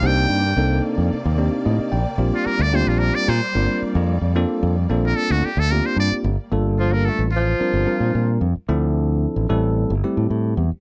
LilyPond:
<<
  \new Staff \with { instrumentName = "Muted trumpet" } { \time 4/4 \key bes \major \tempo 4 = 111 g''4. r2 r8 | r16 f'16 bes'16 d''16 c''16 f'16 bes'16 d''16 c''4 r4 | r4 r16 bes'16 a'16 fis'16 g'16 a'16 bes'16 c''16 d''8 r8 | \key g \dorian r8 f'16 bes'16 a'16 r16 f'2 r8 |
r1 | }
  \new Staff \with { instrumentName = "Tine electric piano" } { \time 4/4 \key bes \major << { r2. ees''8 g''8 | r1 | r1 | \key g \dorian r1 |
r1 | } \\ { <bes c' d' ees' g'>8 r8 <bes c' d' ees' a'>4 r8 <bes c' d' ees' g'>4 r8 | <bes c' d' f' g'>8 r8 <bes c' d' f' g'>4 r8 <bes c' d' f' bes'>4 r8 | <bes c' d' f' a'>8 r8 <bes c' d' f' a'>4 r8 <bes c' d' f' g'>4 r8 | <g bes d' f' a'>4. r8 <g c' d' f' bes'>8 <g c' d' f' bes'>4 r8 |
<f c' d' e' a'>4. <g a c' e' a'>4 <g a c' e' g'>4 r8 | } >> }
  \new Staff \with { instrumentName = "String section" } { \clef bass \time 4/4 \key bes \major << { d''1~ | d''1~ | d''1 | \key g \dorian r1 |
r1 | } \\ { <c bes>1 | g1~ | g1 | r1 |
r1 | } >> }
  \new Staff \with { instrumentName = "Tenor saxophone" } { \clef bass \time 4/4 \key bes \major r1 | r1 | r1 | \key g \dorian r8 f16 bes16 a16 r16 f2 r8 |
r1 | }
  \new Staff \with { instrumentName = "Fingered electric bass" } { \clef bass \time 4/4 \key bes \major c,8 g,8 c,8 r16 f,16 r16 ees,8 r16 a,16 r16 bes,,16 r16 | bes,,16 r8 d,8 bes,,8 r16 bes,16 r16 g,,16 r8 f,8 f,16~ | f,16 r16 f,8 bes,,8 r16 d,16 r16 d,8 r16 g,16 r16 g,,16 r16 | \key g \dorian g,,4~ g,,16 a,,8. r16 g,,16 r16 bes,16 bes,8 f,16 r16 |
d,4~ d,16 a,,16 a,,8. g,,16 r16 a,16 a,8 e,16 r16 | }
>>